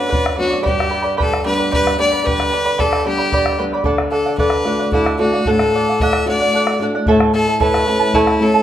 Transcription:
Already playing: nylon-string guitar F#2 F#3 B3 D4, fiddle B4
0.09 charango B4 D5 F#5, bombo low
0.26 bombo rim
0.36 nylon-string guitar F#3 B3 D4, charango B4 D5 F#5
0.40 fiddle F#4
0.48 charango D5 F#5
0.53 bombo rim
0.62 charango G4 B4 D5 G5 B5, fiddle G4
0.66 nylon-string guitar G2, bombo low
0.80 bombo rim
0.90 charango B4 D5 G5 B5
0.94 bombo rim
1.02 charango B4 D5 B5
1.17 charango G4 B4 D5 G5 B5, fiddle A4, bombo low
1.34 bombo rim
1.44 nylon-string guitar G3 B3 D4, charango B4 D5 G5 B5, fiddle B4, bombo rim
1.58 charango B4 D5 B5
1.71 charango G4 B4 D5 G5 B5, fiddle B4, bombo low
1.87 bombo rim
1.99 nylon-string guitar G3 B3 D4, charango B4 D5 G5 B5, fiddle D5
2.12 charango B4 D5 B5, bombo rim
2.19 fiddle D5
2.24 nylon-string guitar D3, charango G4 B4 D5 G5 B5, fiddle B4, bombo rim, bombo low
2.40 bombo rim
2.52 charango B4 D5 G5 B5
2.65 charango B4 D5 B5
2.78 charango G4 B4 D5 G5 B5, fiddle A4, bombo low
2.93 bombo rim
3.04 nylon-string guitar G3 B3 D4, fiddle G4, charango B4 D5 G5 B5
3.18 charango B4 D5 B5
3.32 charango G4 B4 D5 G5 B5, bombo low
3.46 bombo rim
3.59 nylon-string guitar G3 B3 D4, charango B4 D5 G5 B5, bombo rim
3.72 charango B4 D5 B5, bombo rim
3.84 nylon-string guitar D3, charango A4 D5 F#5, bombo low
3.98 bombo rim
4.11 charango A4 D5 F#5, fiddle A4, bombo rim
4.26 charango D5 F#5
4.38 charango A4 D5 F#5, fiddle B4, bombo low
4.50 bombo rim
4.65 nylon-string guitar A3 D4 F#4, charango A4 D5 F#5, bombo rim
4.79 charango D5 F#5
4.92 fiddle E4, charango A4 D5 F#5, bombo low
5.06 bombo rim
5.18 nylon-string guitar A3 D4 F#4, fiddle F#4, charango A4 D5 F#5
5.33 charango D5 F#5, bombo rim
5.45 nylon-string guitar A2, charango A4 D5 F#5, fiddle A4, bombo low
5.59 bombo rim
5.73 charango A4 D5 F#5, bombo rim
5.89 charango D5 F#5
6.00 charango A4 D5 F#5, fiddle E5, bombo low
6.13 bombo rim
6.26 nylon-string guitar A3 D4 F#4, charango A4 D5, fiddle D5, bombo rim
6.30 charango F#5
6.40 charango D5 F#5
6.55 charango A4 D5 F#5
6.67 bombo rim
6.79 nylon-string guitar A3 D4 F#4, charango A4 D5
6.83 charango F#5
6.95 charango D5 F#5, bombo rim
7.06 nylon-string guitar A2, charango E4 A4 C#5 E5 A5, bombo low
7.20 bombo rim
7.33 charango E4 A4 E5 A5, fiddle A4, bombo rim
7.47 charango E4 A4 A5
7.60 charango E4 A4 C#5 E5 A5, fiddle B4, bombo low
7.74 bombo rim
7.86 nylon-string guitar A3 C#4 E4, charango E4 A4 E5 A5
8.00 charango E4 A4 A5
8.14 charango E4 A4 C#5 E5 A5, fiddle E4, bombo low
8.27 bombo rim
8.39 nylon-string guitar A3 C#4 E4, charango E4 A4 E5 A5, fiddle A4
8.54 charango E4 A4 A5, bombo rim

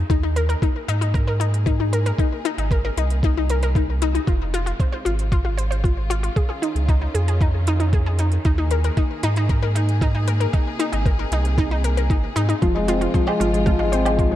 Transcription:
Already playing: string section D#3
0.10 sub bass D#2, string section A#3 G#4, synth arpeggio sound D#4, kick, closed hi-hat
0.23 synth arpeggio sound D#4
0.36 synth arpeggio sound A#4, closed hi-hat
0.49 synth arpeggio sound A#4, closed hi-hat
0.62 synth arpeggio sound D#4, kick, closed hi-hat
0.88 sub bass G#2, synth arpeggio sound D#4, closed hi-hat
1.01 synth arpeggio sound D#4, closed hi-hat
1.14 synth arpeggio sound A#4, kick, closed hi-hat
1.27 synth arpeggio sound A#4
1.40 synth arpeggio sound D#4, closed hi-hat
1.54 closed hi-hat
1.66 synth arpeggio sound D#4, kick, closed hi-hat
1.80 synth arpeggio sound D#4
1.93 synth arpeggio sound A#4, closed hi-hat
2.06 synth arpeggio sound A#4, closed hi-hat
2.18 string section C3, synth arpeggio sound D#4, kick, closed hi-hat
2.45 synth arpeggio sound D#4, closed hi-hat
2.58 sub bass G#1, synth arpeggio sound D#4, closed hi-hat
2.71 synth arpeggio sound A#4, kick, closed hi-hat
2.85 synth arpeggio sound A#4
2.97 sub bass C2, synth arpeggio sound D#4, closed hi-hat
3.10 closed hi-hat
3.23 synth arpeggio sound D#4, kick, closed hi-hat
3.37 synth arpeggio sound D#4
3.49 synth arpeggio sound A#4, closed hi-hat
3.63 synth arpeggio sound A#4, closed hi-hat
3.75 synth arpeggio sound D#4, kick, closed hi-hat
4.01 sub bass C2, synth arpeggio sound D#4, closed hi-hat
4.15 synth arpeggio sound D#4, closed hi-hat
4.27 sub bass F1, string section G#3 F4, synth arpeggio sound F4, kick, closed hi-hat
4.54 synth arpeggio sound F4, closed hi-hat
4.66 synth arpeggio sound F4, closed hi-hat
4.80 synth arpeggio sound C5, kick, closed hi-hat
4.92 synth arpeggio sound C5
5.05 sub bass G#1, synth arpeggio sound F4, closed hi-hat
5.19 closed hi-hat
5.32 synth arpeggio sound F4, kick, closed hi-hat
5.45 synth arpeggio sound F4
5.57 synth arpeggio sound C5, closed hi-hat
5.71 synth arpeggio sound C5, closed hi-hat
5.84 synth arpeggio sound F4, kick, closed hi-hat
6.10 synth arpeggio sound F4, closed hi-hat
6.23 synth arpeggio sound F4, closed hi-hat
6.36 string section D#3 C#4, synth arpeggio sound G#4, kick, closed hi-hat
6.49 synth arpeggio sound G#4
6.62 synth arpeggio sound D#4, closed hi-hat
6.75 sub bass C#2, closed hi-hat
6.89 synth arpeggio sound D#4, kick, closed hi-hat
7.01 synth arpeggio sound D#4
7.14 sub bass F2, synth arpeggio sound G#4, closed hi-hat
7.28 synth arpeggio sound G#4, closed hi-hat
7.41 synth arpeggio sound D#4, kick, closed hi-hat
7.67 synth arpeggio sound D#4, closed hi-hat
7.80 synth arpeggio sound D#4, closed hi-hat
7.93 synth arpeggio sound G#4, kick, closed hi-hat
8.06 synth arpeggio sound G#4
8.19 synth arpeggio sound D#4, closed hi-hat
8.32 closed hi-hat
8.45 sub bass D#2, string section A#3 G#4, synth arpeggio sound D#4, kick, closed hi-hat
8.58 synth arpeggio sound D#4
8.71 synth arpeggio sound A#4, closed hi-hat
8.84 synth arpeggio sound A#4, closed hi-hat
8.97 synth arpeggio sound D#4, kick, closed hi-hat
9.23 sub bass G#2, synth arpeggio sound D#4, closed hi-hat
9.36 synth arpeggio sound D#4, closed hi-hat
9.49 synth arpeggio sound A#4, kick, closed hi-hat
9.63 synth arpeggio sound A#4
9.75 synth arpeggio sound D#4, closed hi-hat
9.89 closed hi-hat
10.01 synth arpeggio sound D#4, kick, closed hi-hat
10.15 synth arpeggio sound D#4
10.28 synth arpeggio sound A#4, closed hi-hat
10.40 synth arpeggio sound A#4, closed hi-hat
10.53 string section C3, synth arpeggio sound D#4, kick, closed hi-hat
10.79 synth arpeggio sound D#4, closed hi-hat
10.92 sub bass G#1, synth arpeggio sound D#4, closed hi-hat
11.06 synth arpeggio sound A#4, kick, closed hi-hat
11.19 synth arpeggio sound A#4
11.31 sub bass C2, synth arpeggio sound D#4, closed hi-hat
11.45 closed hi-hat
11.58 synth arpeggio sound D#4, kick, closed hi-hat
11.71 synth arpeggio sound D#4
11.84 synth arpeggio sound A#4, closed hi-hat
11.97 synth arpeggio sound A#4, closed hi-hat
12.10 sub bass G#1, synth arpeggio sound D#4, kick, closed hi-hat
12.36 sub bass G#2, synth arpeggio sound D#4, closed hi-hat
12.49 synth arpeggio sound D#4, closed hi-hat
12.62 sub bass F1, string section C3 G#3 F4, felt piano F3, synth arpeggio sound F4, kick, closed hi-hat
12.75 felt piano G#3
12.88 felt piano C4, synth arpeggio sound F4, closed hi-hat
13.01 felt piano G#3, synth arpeggio sound F4, closed hi-hat
13.14 felt piano F3, synth arpeggio sound C5, kick, closed hi-hat
13.27 felt piano G#3, synth arpeggio sound C5, low woodblock
13.40 sub bass G#1, felt piano F3, synth arpeggio sound F4, closed hi-hat
13.53 felt piano G#3, closed hi-hat
13.66 felt piano F3, synth arpeggio sound F4, kick, closed hi-hat
13.79 felt piano G#3, synth arpeggio sound F4
13.92 felt piano C4, synth arpeggio sound C5, closed hi-hat
14.05 felt piano G#3, synth arpeggio sound C5, closed hi-hat, low woodblock
14.18 felt piano F3, synth arpeggio sound F4, kick, closed hi-hat
14.31 felt piano G#3

